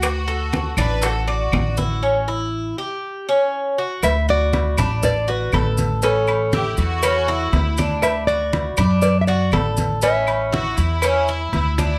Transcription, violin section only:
\new Staff \with { instrumentName = "Violin section" } { \time 4/4 \key d \major \tempo 4 = 120 fis'4. b'8 a'8 fis'4.~ | fis'8 r2. r8 | r1 | r4 g'8 fis'4. e'8. r16 |
r1 | r4 fis'8 e'4. e'8 e'8 | }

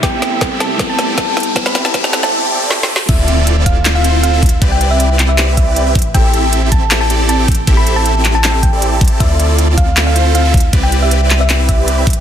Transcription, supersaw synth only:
\new Staff \with { instrumentName = "Supersaw synth" } { \time 4/4 \key a \minor \tempo 4 = 157 <c' e' g' a' e''>8 <c' e' g' a' e''>8. <c' e' g' a' e''>4 <c' e' g' a' g''>16 <c' e' g' a' d''>8. <c' e' g' a' g''>16 r8 | <c' e' g' a' e''>8 <c' e' g' a' e''>8. <c' e' g' a' e''>4 <c' e' g' a' g''>16 <c' e' g' a' d''>8. <c' e' g' a' g''>16 r8 | <c' e' f' a' d''>8 <c' e' f' a' d''>8. <c' e' f' a' d''>4 <c' e' f' a' e''>16 <c' e' f' a' c''>8. <c' e' f' a' e''>16 r8 | <c' e' g' b' d''>8 <c' e' g' b' d''>8. <c' e' g' b' d''>4 <c' e' g' b' e''>16 <c' e' g' b' d''>8. <c' e' g' b' e''>16 r8 |
<c' e' g' a' e''>8 <c' e' g' a' e''>8. <c' e' g' a' e''>4 <c' e' g' a' g''>16 <c' e' g' a' d''>8. <c' e' g' a' g''>16 r8 | <c' e' g' a' e''>8 <c' e' g' a' e''>8. <c' e' g' a' e''>4 <c' e' g' a' g''>16 r16 <c' e' g' a' d''>8 <c' e' g' a' a''>8. | <c' e' f' a' d''>8 <c' e' f' a' d''>8. <c' e' f' a' d''>4 <c' e' f' a' e''>16 <c' e' f' a' c''>8. <c' e' f' a' e''>16 r8 | <c' e' g' b' d''>8 <c' e' g' b' d''>8. <c' e' g' b' d''>4 <c' e' g' b' e''>16 <c' e' g' b' d''>8. <c' e' g' b' e''>16 r8 | }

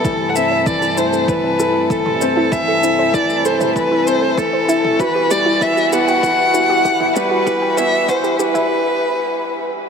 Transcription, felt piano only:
\new Staff \with { instrumentName = "Felt piano" } { \clef bass \time 4/4 \key a \dorian \tempo 4 = 97 e8 c'8 e8 e'8 e8 a'8 e8 c'8 | e8 e'8 e8 a'8 e8 c'8 e8 e'8 | e8 g8 e8 b8 e8 e'8 e8 g8 | e8 b8 e8 e'8 r2 | }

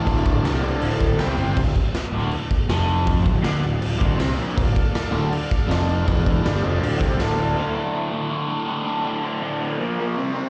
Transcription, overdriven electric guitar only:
\new Staff \with { instrumentName = "Overdriven electric guitar" } { \clef bass \time 4/4 \key d \minor \tempo 4 = 160 <d, a, d>4 <d, a, d>8 <d, a, d>8 <d, a, d>4 <c g c'>8 <c g c'>8 | d,8 r4 <d, d>8 r4 <f, f>4~ | <f, f>8 d,8 <d d'>8 d,8 d,8 <d, d>8 <c c'>8 <bes, bes>8 | d,8 r4 <d, d>8 r4 <f, f>4 |
<e, e>4 <g, g>8 <f, f>8 <d, d>8 <c c'>8 <d, d>4 | <d, a, d>8 <d, a, d>8 <d, a, d>8 <d, a, d>8 <d, a, d>8 <d, a, d>8 <d, a, d>8 <d, a, d>8 | <d, a, d>8 <d, a, d>8 <d, a, d>8 <d, a, d>8 <bes, f bes>8 <bes, f bes>8 <c g c'>8 <c g c'>8 | }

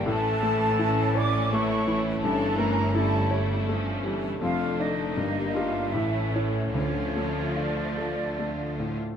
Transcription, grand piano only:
\new Staff \with { instrumentName = "Grand piano" } { \time 3/4 \key d \minor \tempo 4 = 80 a,8 a8 e'8 cis''8 a8 e8 | g,8 a8 e'8 cis''8 a8 g8 | f,8 <d' d''>8 g,8 <g' ees''>8 a,8 <e' cis''>8 | d,8 a8 f'8 a'8 a8 a,8 | }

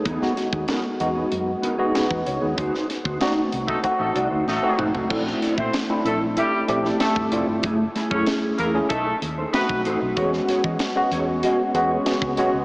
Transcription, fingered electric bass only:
\new Staff \with { instrumentName = "Fingered electric bass" } { \clef bass \time 4/4 \key bes \lydian \tempo 4 = 95 e,16 r8 dis,16 r8 e,8 fis,8 r8. e,16 cis,16 dis,16 | d,16 r8 d,16 r8 c,8 r16 a,,16 c,16 d,16 a,,16 r16 bes,,16 c,16 | bes,,8 r16 bes,16 r8 bes,,8. r16 bes,,8 r16 g,,16 f,,16 g,,16 | fis,,8 r16 fis,16 r8 e,8 b,,8 dis,8 r16 b,,16 a,,16 b,,16 |
e,8 r16 e16 r8 e,8. r16 e,8 r16 cis,16 b,,16 cis,16 | }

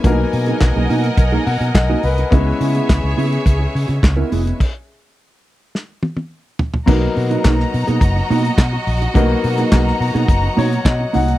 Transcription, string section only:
\new Staff \with { instrumentName = "String section" } { \time 4/4 \key b \major \tempo 4 = 106 << { gis''1~ | gis''1 | r1 | ais''1 |
ais''1 | } \\ { <ais' dis'' fis''>1 | <gis' cis'' e''>1 | r1 | <fis' dis'' fis''>1~ |
<fis' dis'' fis''>1 | } >> }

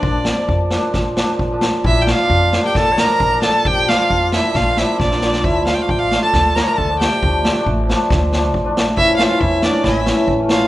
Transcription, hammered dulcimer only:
\new Staff \with { instrumentName = "Hammered dulcimer" } { \time 4/4 \tempo 4 = 135 <f bes d'>8 r16 <f bes d'>16 r8 <f bes d'>8 r8 <f bes d'>8 r16 <f bes d'>16 r8 | <f bes d'>8 r16 <f bes d'>16 r8 <f bes d'>8 r8 <f bes d'>8 r16 <f bes d'>16 r8 | <f bes d'>8 r16 <f bes d'>16 r8 <f bes d'>8 r8 <f bes d'>8 r16 <f bes d'>16 r8 | <f a d'>8 r16 <f a d'>16 r8 <f a d'>8 r8 <f a d'>8 r16 <f a d'>16 r8 |
<f a d'>8 r16 <f a d'>16 r8 <f a d'>8 r8 <f a d'>8 r16 <f a d'>16 r8 | <e a cis'>8 r16 <e a cis'>16 r8 <e a cis'>8 r8 <e a cis'>8 r16 <e a cis'>16 r8 | }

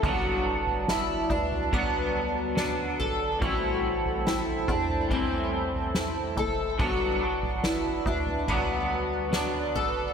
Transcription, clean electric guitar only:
\new Staff \with { instrumentName = "Clean electric guitar" } { \clef bass \time 4/4 \key g \major \tempo 4 = 71 <g, d fis b d'>2 <g, d fis b d'>4 <d fis b d'>4 | <a, e g c' e'>2 <a, e g c' e'>2 | <g, d fis b d'>8 <fis b d'>4. <g, d fis b d'>4 <d fis b d'>4 | }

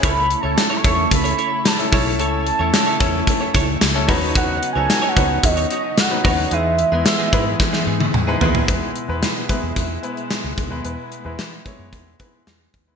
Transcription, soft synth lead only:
\new Staff \with { instrumentName = "Soft synth lead" } { \time 4/4 \key e \major \tempo 4 = 111 \tuplet 3/2 { b''4 a''8~ a''8 cis'''4 } b''4 a''4 | a''2 r2 | \tuplet 3/2 { fis''4 gis''8~ gis''8 fis''4 } dis''8 dis''8 fis''4 | e''2. r4 |
r1 | r1 | }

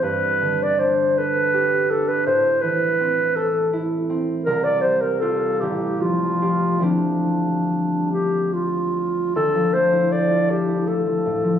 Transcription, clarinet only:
\new Staff \with { instrumentName = "Clarinet" } { \time 6/8 \key d \minor \tempo 4. = 53 b'8. d''16 c''8 b'4 a'16 b'16 | c''8 b'4 a'8 r4 | bes'16 d''16 c''16 bes'16 a'8 g'8 f'4 | d'4. g'8 f'4 |
a'8 c''8 d''8 g'8 a'4 | }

